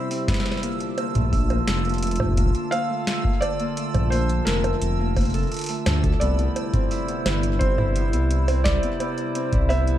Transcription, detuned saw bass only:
1.15 A#1
1.68 F1
3.94 A#1
4.47 F1
4.82 F1
5.86 D2
6.21 C2
7.26 G1
8.13 C2
9.53 C2

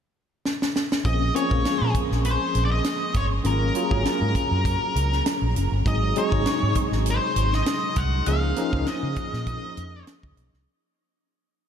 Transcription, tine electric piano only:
1.04 F3 A#3 C4 C#4 G#4
1.35 F3 A#3 C4 C#4 G#4
1.51 F3 G#3 A#3 C#4 G#4
3.44 F#3 A#3 C#4 F4 G#4
3.75 F#3 A#3 C#4 F4 G#4
3.90 F#3 A#3 C4 F4 G#4
3.96 C#4
5.86 F#3 G#3 C4 D#4 G#4
6.16 F#3 G#3 C4 D#4 G#4
6.32 C3 F#3 G#3 D#4 G#4
8.27 F3 A#3 C#4 D#4 G#4
8.57 F3 A#3 C#4 D#4 G#4
8.73 F3 A#3 C#4 D#4 G#4

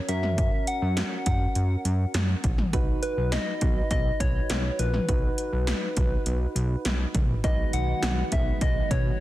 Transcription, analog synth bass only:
0.09 F#2
0.82 F#2
1.26 F#2
1.56 F#2
1.85 F#2
2.14 F#2
2.44 A#1
2.73 B1
3.17 B1
3.62 B1
3.91 B1
4.20 B1
4.50 B1
4.79 A#1
5.09 B1
5.53 B1
5.97 B1
6.26 B1
6.55 B1
6.85 B1
7.15 A#1
7.44 B1
7.73 B1
8.03 B1
8.32 B1
8.61 B1
8.91 B2

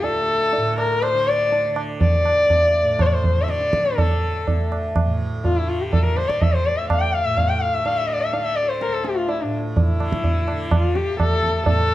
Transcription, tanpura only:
Already playing: A2 D3
0.01 D2
0.57 A2
1.14 D3
1.69 D3
2.25 D2
2.82 A2
3.37 D3
3.92 D3
4.49 D2
5.05 A2
5.60 D3
6.14 D3
6.69 D2
7.24 A2
7.78 D3
8.33 D3
8.88 D2
9.43 A2
9.97 D3
10.51 D3
11.04 D2
11.67 A2

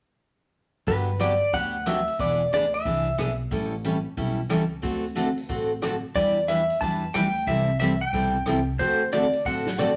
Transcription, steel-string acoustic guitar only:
0.87 D3 F#3 B3 D4 G4
1.19 D3 F#3 B3 D4 G4
1.53 D3 F#3 B3 D4 G4
1.86 D3 F#3 B3 D4 G4
2.19 E3 B3 D4 G#4
2.53 E3 B3 D4 G#4
2.85 E3 B3 D4 G#4
3.18 E3 B3 D4 G#4
3.51 E3 G3 C#4 E4 A4
3.84 E3 G3 C#4 E4 A4
4.17 E3 G3 C#4 E4 A4
4.49 E3 G3 C#4 E4 A4
4.82 D3 A3 C4 F#4 A4
5.15 D3 A3 C4 F#4 A4
5.49 D3 A3 C4 F#4 A4
5.82 D3 A3 C4 F#4 A4
6.15 E3 G3 D4 E4 B4
6.48 E3 G3 D4 E4 B4
6.81 E3 G3 D4 E4 B4
7.15 E3 G3 D4 E4 B4
7.48 C3 E3 G3 C4 E4 A4
7.80 C3 E3 G3 C4 E4 A4
8.13 C3 E3 G3 C4 E4 A4
8.47 C3 E3 G3 C4 E4 A4
8.79 D3 A3 C4 F#4 A4
9.12 D3 A3 C4 F#4 A4
9.45 D3 A3 C4 F#4 A4
9.79 D3 A3 C4 F#4 A4

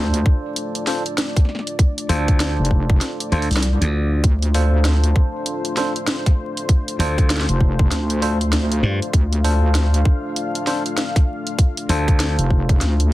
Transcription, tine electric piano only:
Already playing: D4 F4 A4 C5
0.87 D4 F4 A4 C5
2.09 D4 F4 A4 C5
3.32 D4 F4 A4 C5
4.55 D4 F4 A4 C5
5.77 D4 F4 A4 C5
7.00 D4 F4 A4 C5
8.22 D4 F4 A4 C5
9.45 D4 F4 A4 C5
10.67 D4 F4 A4 C5
11.90 D4 F4 A4 C5

